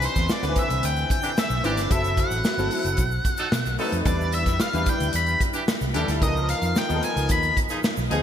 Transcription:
Already playing: grand piano E3 C4 D4 B4
0.02 lead electric guitar C5, closed hi-hat, shaker
0.16 fingered electric bass E2, kick, snare, closed hi-hat, shaker
0.29 lead electric guitar D5, snare, shaker
0.42 fingered electric bass D2, grand piano D3 C4 D4 B4, snare, closed hi-hat, shaker
0.49 grand piano E3
0.56 lead electric guitar E5, kick, closed hi-hat, shaker
0.70 fingered electric bass C2, closed hi-hat, shaker
0.83 fingered electric bass D2, lead electric guitar G5, closed hi-hat, shaker
0.96 closed hi-hat, shaker
1.10 lead electric guitar G5, kick, closed hi-hat, shaker
1.22 horn section E3 D4 G4, closed hi-hat, shaker
1.37 lead electric guitar E5, snare, shaker
1.50 fingered electric bass B1, snare, shaker
1.63 fingered electric bass G#1, grand piano E3 C4 D4 E4, horn section E3 D4 G4, lead electric guitar D5, closed hi-hat
1.77 fingered electric bass G1, snare, closed hi-hat, shaker
1.90 fingered electric bass F#1, grand piano F#3 C4 E4 A4, lead electric guitar E5, kick, closed hi-hat, shaker
2.04 closed hi-hat, shaker
2.17 lead electric guitar F#5, kick, closed hi-hat, shaker
2.31 fingered electric bass A1, closed hi-hat, shaker
2.44 snare, shaker
2.58 fingered electric bass G1, grand piano F#3 C4 E4 A4, snare, shaker
2.71 open hi-hat, shaker
2.84 fingered electric bass F#1, closed hi-hat, shaker
2.97 fingered electric bass B1, kick, closed hi-hat, shaker
3.11 shaker
3.25 kick, closed hi-hat, shaker
3.37 horn section F#3 D#4 A4, closed hi-hat, shaker
3.52 fingered electric bass B2, snare, shaker
3.65 fingered electric bass B1, snare, closed hi-hat, shaker
3.79 horn section F#3 D#4 A4, grand piano A3 C4 D#4 B4, open hi-hat
3.92 fingered electric bass F2, closed hi-hat, shaker
4.05 fingered electric bass E2, grand piano G3 D4 E4 B4, lead electric guitar D5, kick, closed hi-hat, shaker
4.21 shaker
4.32 lead electric guitar E5, closed hi-hat, shaker
4.46 fingered electric bass F2, kick, snare, closed hi-hat, shaker
4.60 lead electric guitar F5, snare, shaker
4.73 fingered electric bass E2, grand piano G3 D4 E4 B4, closed hi-hat, shaker
4.86 lead electric guitar G5, kick, closed hi-hat, shaker
5.00 fingered electric bass D2, closed hi-hat, shaker
5.13 fingered electric bass E2, lead electric guitar B5, closed hi-hat, shaker
5.26 closed hi-hat, shaker
5.41 kick, closed hi-hat, shaker
5.53 horn section E3 D4 G4, closed hi-hat, shaker
5.68 snare, shaker
5.81 fingered electric bass C2, snare, shaker
5.94 fingered electric bass D#2, horn section E3 D4 G4, grand piano G3 D4 E4 A4, closed hi-hat
6.08 fingered electric bass D2, snare, closed hi-hat, shaker
6.21 fingered electric bass C#2, grand piano E3 B3 D#4 A#4, lead electric guitar D#5, kick, closed hi-hat, shaker
6.28 grand piano F3
6.37 shaker
6.49 lead electric guitar F5, closed hi-hat, shaker
6.62 fingered electric bass F2, closed hi-hat, shaker
6.76 lead electric guitar G5, snare, shaker
6.88 fingered electric bass D#2, grand piano F3 B3 D#4 A4, closed hi-hat, shaker
6.96 grand piano A#4
7.03 lead electric guitar G#5, closed hi-hat, shaker
7.16 fingered electric bass C#2, closed hi-hat, shaker
7.29 fingered electric bass D#2, lead electric guitar B5, kick, closed hi-hat, shaker
7.43 closed hi-hat, shaker
7.57 kick, closed hi-hat, shaker
7.69 horn section F3 D#4 G#4, closed hi-hat, shaker
7.84 snare, shaker
7.97 fingered electric bass B1, snare, shaker
8.10 fingered electric bass D2, grand piano F3 B3 D#4 G#4, horn section F3 D#4 G#4, closed hi-hat

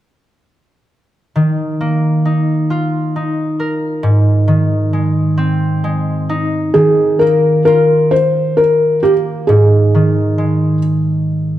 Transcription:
1.36 harp D#3
1.81 harp A#3
2.25 harp D#4
2.70 harp F4
3.16 harp D#4
3.60 harp A#4
4.03 harp G#2
4.48 harp D#3
4.93 harp G#3
5.37 harp C4
5.84 harp G#3
6.29 harp D#4
6.74 harp D#3, felt piano G#4
7.19 harp A#3, felt piano A#4
7.65 harp F4, felt piano A#4
8.11 felt piano C5
8.57 felt piano A#4
9.03 harp A#3, felt piano G4
9.47 harp G#2, felt piano G#4
9.95 harp D#3
10.38 harp G#3

